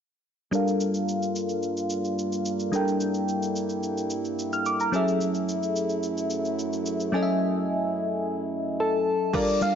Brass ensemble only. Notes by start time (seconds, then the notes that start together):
0.53 G2 G3 A#3 F4
2.73 E4
4.94 F#2 F#3 A3
9.34 G3 A#3 D4 F4